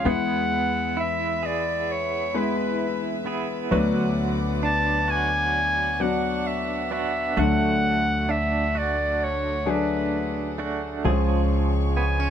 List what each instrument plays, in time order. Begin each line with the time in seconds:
Already playing: string section G#3, clean electric guitar F4, clarinet F5
0.04 upright bass E2, grand piano E2 E3 G#3 B3 E4 B4, clean electric guitar B3 G#4, string section B4 E5 B5
0.09 clarinet F#5
0.97 clean electric guitar E4, clarinet E5
1.43 clean electric guitar G#4, clarinet D5
1.91 clarinet C#5
2.34 grand piano G#3 B3 E4 B4, clean electric guitar E4, clarinet B4
3.26 clean electric guitar B3 E4 G#4
3.71 upright bass D2, grand piano D2 D3 F#3 B3 D4 B4, clean electric guitar F#3 F#4, string section D5 F#5 D6
4.63 clean electric guitar D4, clarinet A5
5.08 clean electric guitar F#4, clarinet G#5
5.53 string section C#6
6.00 grand piano F#3 B3 D4 F#4, clean electric guitar D4, clarinet F#5
6.47 clarinet E5
6.91 clean electric guitar B3 D4 F#4, clarinet E5
7.37 upright bass D2, grand piano D2 D3 F#3 A3 D4 A4, clean electric guitar A3 F#4, string section A3 D4, clarinet F#5
8.29 clean electric guitar D4, clarinet E5
8.75 clean electric guitar F#4, clarinet D5
9.24 clarinet C#5
9.66 grand piano F#3 A3 D4 G#4, clean electric guitar D4, clarinet B4
10.58 clean electric guitar A3 D4 F#4
11.04 upright bass C#2, grand piano C#2 C#3 F3 G#3 C#4 G#4, clean electric guitar F3 G#4, string section G#3 C#5 C#6
11.96 clean electric guitar B3, clarinet G#5
12.20 clean electric guitar C#4